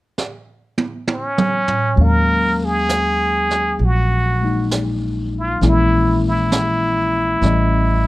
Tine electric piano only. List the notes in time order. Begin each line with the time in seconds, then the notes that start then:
1.96 F#3 G#3 A#3 C#4
2.01 F5
4.41 G#3 A#3 D#4
5.62 E3 G#3 A#3 C#4 E4
7.41 E3 G3 A3 C#4
7.46 D#5